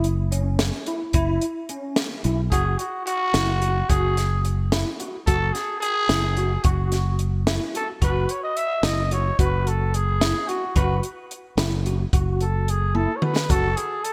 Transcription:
0.00 0.70 F#1 medium
0.00 closed hi-hat medium
0.32 0.61 C#4 medium
0.32 closed hi-hat medium
0.59 snare loud
0.59 closed hi-hat medium
0.86 1.02 E4 medium
0.86 closed hi-hat medium
1.13 1.37 F#1 loud
1.13 1.44 E4 loud
1.13 kick loud
1.13 closed hi-hat medium
1.41 closed hi-hat medium
1.69 1.99 C#4 medium
1.69 closed hi-hat medium
1.96 snare loud
1.96 closed hi-hat medium
2.24 2.48 B1 medium
2.24 2.39 E4 medium
2.24 closed hi-hat medium
2.51 2.75 F#1 medium
2.51 2.81 F#4 medium
2.51 2.79 G#4 medium
2.51 kick medium
2.51 closed hi-hat medium
2.78 3.05 F#4 medium
2.78 closed hi-hat medium
3.06 3.91 F#4 loud
3.06 closed hi-hat medium
3.34 3.81 F#1 medium
3.34 3.49 E4 medium
3.34 snare loud
3.34 closed hi-hat medium
3.62 3.77 F#4 medium
3.62 closed hi-hat medium
3.89 4.83 F#1 medium
3.89 4.19 F#4 medium
3.89 4.44 G#4 medium
3.89 kick medium
3.89 closed hi-hat medium
4.17 snare soft
4.17 closed hi-hat medium
4.45 closed hi-hat medium
4.72 4.87 E4 medium
4.72 snare loud
4.72 closed hi-hat medium
5.00 5.14 F#4 medium
5.00 closed hi-hat medium
5.26 5.51 F#1 medium
5.26 5.57 F#4 medium
5.26 5.54 A4 loud
5.26 kick medium
5.26 closed hi-hat medium
5.53 5.80 G#4 medium
5.53 snare soft
5.53 closed hi-hat medium
5.80 6.65 G#4 loud
5.80 closed hi-hat medium
6.09 6.56 F#1 medium
6.09 6.25 E4 medium
6.09 snare loud
6.09 closed hi-hat medium
6.37 6.52 F#4 medium
6.37 closed hi-hat medium
6.64 7.58 F#1 medium
6.64 7.19 F#4 medium
6.64 6.94 F#4 medium
6.64 kick loud
6.64 closed hi-hat medium
6.92 snare soft
6.92 closed hi-hat medium
7.19 closed hi-hat medium
7.47 7.62 E4 medium
7.47 snare loud
7.47 closed hi-hat medium
7.75 7.89 F#4 medium
7.75 7.88 A4 medium
7.75 closed hi-hat medium
8.01 8.25 F#1 medium
8.01 8.31 F#4 medium
8.01 8.32 B4 medium
8.01 kick loud
8.01 closed hi-hat medium
8.29 8.43 C#5 medium
8.29 closed hi-hat medium
8.43 8.58 D#5 loud
8.57 8.85 E5 loud
8.57 closed hi-hat medium
8.83 9.30 F#1 loud
8.83 8.99 E4 medium
8.83 9.14 D#5 medium
8.83 snare loud
8.83 closed hi-hat medium
9.11 9.26 F#4 medium
9.11 9.39 C#5 medium
9.11 closed hi-hat medium
9.39 10.32 F#1 loud
9.39 9.68 F#4 medium
9.39 9.69 B4 medium
9.39 kick loud
9.39 closed hi-hat medium
9.67 9.96 A4 medium
9.67 closed hi-hat medium
9.94 10.49 G#4 loud
9.94 closed hi-hat medium
10.21 10.36 E4 medium
10.21 snare loud
10.21 closed hi-hat medium
10.48 10.75 F#4 medium
10.48 10.63 F#4 medium
10.48 closed hi-hat medium
10.76 10.99 F#1 loud
10.76 11.05 F#4 loud
10.76 11.02 B4 medium
10.76 kick loud
10.76 closed hi-hat medium
11.03 closed hi-hat medium
11.31 closed hi-hat medium
11.57 12.04 F#1 loud
11.57 11.73 E4 medium
11.57 snare loud
11.57 closed hi-hat medium
11.86 12.01 F#4 medium
11.86 closed hi-hat medium
12.13 13.06 F#1 medium
12.13 12.43 F#4 medium
12.13 kick loud
12.13 closed hi-hat medium
12.41 12.71 A4 medium
12.41 closed hi-hat medium
12.68 12.97 G#4 medium
12.68 closed hi-hat medium
12.95 13.10 E4 medium
12.95 13.18 A4 medium
12.95 high tom medium
13.16 13.25 C#5 medium
13.22 13.37 F#4 medium
13.22 13.52 B4 medium
13.22 mid tom medium
13.36 snare medium
13.50 13.73 F#1 medium
13.50 13.79 F#4 medium
13.50 13.78 A4 medium
13.50 kick loud
13.50 closed hi-hat medium
13.77 14.05 G#4 medium
13.77 closed hi-hat medium
14.04 14.13 A4 loud
14.04 closed hi-hat medium

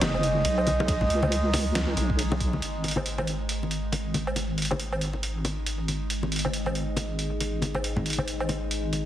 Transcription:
0.00 0.43 F#1 loud
0.00 2.61 G#3 medium
0.00 2.61 D#4 medium
0.00 2.15 D#5 loud
0.00 snare loud
0.00 closed hi-hat medium
0.00 ride medium
0.00 muted conga medium
0.14 low woodblock medium
0.23 closed hi-hat medium
0.45 1.09 B1 loud
0.45 closed hi-hat medium
0.45 ride soft
0.45 muted conga medium
0.58 low woodblock medium
0.67 closed hi-hat medium
0.67 high conga medium
0.80 muted conga medium
0.88 kick loud
0.88 closed hi-hat medium
0.88 ride medium
1.01 low conga medium
1.10 1.96 C#2 loud
1.10 closed hi-hat medium
1.23 muted conga medium
1.23 high conga medium
1.23 low woodblock medium
1.32 closed hi-hat medium
1.32 ride soft
1.53 open hi-hat loud
1.53 muted conga medium
1.75 snare loud
1.75 closed hi-hat medium
1.75 ride medium
1.97 2.61 B1 loud
1.97 closed hi-hat medium
1.97 muted conga medium
2.10 kick medium
2.19 closed hi-hat medium
2.19 ride soft
2.32 muted conga medium
2.40 kick medium
2.40 closed hi-hat medium
2.53 high conga medium
2.62 9.05 G#1 medium
2.62 9.05 G#3 medium
2.62 9.05 D#4 medium
2.62 closed hi-hat medium
2.84 closed hi-hat soft
2.84 muted conga medium
2.88 closed hi-hat medium
2.91 closed hi-hat medium
2.96 high conga medium
2.96 low woodblock medium
3.06 closed hi-hat medium
3.18 muted conga medium
3.18 low woodblock medium
3.27 closed hi-hat medium
3.49 closed hi-hat medium
3.63 muted conga soft
3.71 closed hi-hat soft
3.92 closed hi-hat medium
3.92 muted conga medium
4.14 closed hi-hat medium
4.14 high conga medium
4.27 low woodblock medium
4.36 closed hi-hat medium
4.36 muted conga medium
4.58 closed hi-hat soft
4.62 closed hi-hat medium
4.65 closed hi-hat medium
4.71 muted conga medium
4.71 high conga medium
4.71 low woodblock medium
4.80 closed hi-hat medium
4.92 low woodblock medium
5.01 closed hi-hat medium
5.13 muted conga soft
5.23 closed hi-hat medium
5.45 closed hi-hat soft
5.45 muted conga medium
5.67 closed hi-hat medium
5.88 closed hi-hat soft
5.88 muted conga soft
6.10 closed hi-hat medium
6.23 muted conga medium
6.32 closed hi-hat soft
6.36 closed hi-hat medium
6.39 closed hi-hat medium
6.45 high conga medium
6.45 low woodblock medium
6.53 closed hi-hat medium
6.66 muted conga soft
6.66 low woodblock medium
6.75 closed hi-hat soft
6.97 closed hi-hat medium
6.97 muted conga medium
7.19 closed hi-hat soft
7.41 closed hi-hat medium
7.41 muted conga medium
7.62 closed hi-hat soft
7.62 high conga medium
7.75 muted conga medium
7.75 low woodblock medium
7.84 closed hi-hat medium
7.96 low conga medium
8.06 closed hi-hat soft
8.10 closed hi-hat medium
8.13 closed hi-hat medium
8.18 muted conga soft
8.18 high conga medium
8.18 low woodblock medium
8.28 closed hi-hat medium
8.40 low woodblock medium
8.49 closed hi-hat soft
8.49 muted conga medium
8.71 closed hi-hat medium
8.93 closed hi-hat soft
8.93 muted conga soft

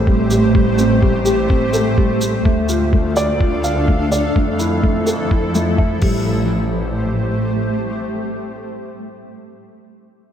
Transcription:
0.00 2.43 A1 medium
0.00 0.07 G3 loud
0.00 2.41 A3 medium
0.00 0.78 C4 medium
0.00 0.30 G4 medium
0.00 2.41 G4 medium
0.00 1.73 A4 medium
0.00 2.41 C5 medium
0.07 0.29 G3 medium
0.07 kick loud
0.30 0.53 G4 medium
0.30 shaker medium
0.55 0.77 G3 medium
0.55 kick loud
0.78 0.92 C4 medium
0.78 shaker medium
1.01 1.15 G3 medium
1.01 kick loud
1.25 1.39 G4 medium
1.25 shaker medium
1.49 1.72 C4 medium
1.49 kick loud
1.73 1.96 A4 medium
1.73 shaker medium
1.97 2.20 G3 medium
1.97 kick loud
2.21 2.44 G4 medium
2.21 shaker medium
2.45 4.33 D2 medium
2.45 2.67 A3 medium
2.45 4.33 D4 medium
2.45 4.33 A4 medium
2.45 4.33 F5 medium
2.45 kick loud
2.69 2.82 F4 medium
2.69 shaker medium
2.93 3.06 A3 medium
2.93 kick loud
3.16 3.30 D5 loud
3.16 shaker medium
3.40 3.63 F4 medium
3.40 kick medium
3.64 3.86 F5 medium
3.64 shaker medium
3.88 4.10 A3 medium
3.88 kick medium
4.12 4.34 D5 medium
4.12 shaker medium
4.35 6.02 F2 medium
4.35 6.00 F3 medium
4.35 4.58 A3 medium
4.35 6.00 E4 medium
4.35 6.00 A4 medium
4.35 kick medium
4.59 4.73 E4 medium
4.59 shaker medium
4.83 4.97 A3 medium
4.83 kick medium
5.07 5.20 A4 medium
5.07 shaker medium
5.31 5.53 E4 medium
5.31 kick medium
5.55 5.68 A3 medium
5.55 shaker medium
5.78 6.01 E5 medium
5.78 kick medium
6.01 7.65 A1 medium
6.01 6.46 G3 medium
6.01 9.01 A3 medium
6.01 9.01 G4 medium
6.01 9.01 C5 medium
6.01 kick medium
6.01 crash medium

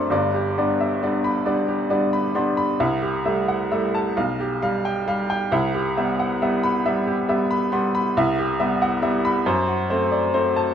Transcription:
0.00 0.13 F#2 medium
0.00 0.13 A3 medium
0.00 0.12 C4 medium
0.00 0.13 D4 medium
0.00 0.12 A4 medium
0.00 0.11 D5 medium
0.00 0.12 E5 medium
0.00 0.11 C6 medium
0.10 0.55 G1 medium
0.10 0.56 G2 medium
0.10 0.48 D5 medium
0.35 0.71 G4 medium
0.58 0.98 G3 medium
0.58 0.98 B3 medium
0.58 0.98 D4 medium
0.58 0.93 D5 medium
0.80 1.02 E5 medium
1.03 1.42 G3 medium
1.03 1.42 B3 medium
1.03 1.43 D4 medium
1.03 1.37 D5 medium
1.24 1.59 B5 medium
1.46 1.86 G3 medium
1.46 1.87 B3 medium
1.46 1.87 D4 medium
1.46 1.81 D5 medium
1.68 2.04 G4 medium
1.90 2.31 G3 medium
1.90 2.31 B3 medium
1.90 2.32 D4 medium
1.90 2.26 D5 medium
2.13 2.49 B5 medium
2.35 2.76 G3 medium
2.35 2.76 B3 medium
2.35 2.76 D4 medium
2.35 2.57 C6 medium
2.57 2.80 B5 medium
2.80 3.24 C2 medium
2.80 3.16 E5 medium
3.02 3.39 G4 medium
3.25 3.68 G3 medium
3.25 3.68 A3 medium
3.25 3.62 E5 medium
3.48 3.71 F#5 medium
3.72 4.13 G3 medium
3.72 4.13 A3 medium
3.72 4.08 E5 medium
3.95 4.17 A5 medium
4.17 4.61 B1 medium
4.17 4.53 F5 medium
4.40 4.76 G4 medium
4.62 5.03 G3 medium
4.62 4.98 F5 medium
4.85 5.07 G5 medium
5.08 5.48 G3 medium
5.08 5.43 F5 medium
5.30 5.52 G5 medium
5.52 5.95 C2 medium
5.52 5.87 E5 medium
5.74 6.10 G4 medium
5.97 6.37 G3 medium
5.97 6.37 B3 medium
5.97 6.32 E5 medium
6.19 6.41 F#5 medium
6.42 6.81 G3 medium
6.42 6.81 B3 medium
6.42 6.76 E5 medium
6.63 6.98 B5 medium
6.86 7.24 G3 medium
6.86 7.24 B3 medium
6.86 7.20 E5 medium
7.07 7.41 G4 medium
7.29 7.68 G3 medium
7.29 7.68 B3 medium
7.29 7.64 E5 medium
7.51 7.85 B5 medium
7.72 8.12 G3 medium
7.72 8.12 B3 medium
7.72 7.94 C6 medium
7.95 8.16 B5 medium
8.17 8.58 C2 medium
8.17 8.51 E5 medium
8.38 8.72 G4 medium
8.60 8.98 G3 medium
8.60 8.99 B3 medium
8.60 8.94 E5 medium
8.82 9.03 F#5 medium
9.02 9.41 G3 medium
9.02 9.41 B3 medium
9.02 9.37 E5 medium
9.25 9.46 B5 medium
9.46 9.88 F#2 medium
9.46 9.80 C5 medium
9.68 10.02 F#4 medium
9.90 10.30 A3 medium
9.90 10.30 C4 medium
9.90 10.25 C5 medium
10.11 10.33 D5 medium
10.34 10.74 A3 medium
10.34 10.74 C4 medium
10.34 10.69 C5 medium
10.56 10.74 A5 medium

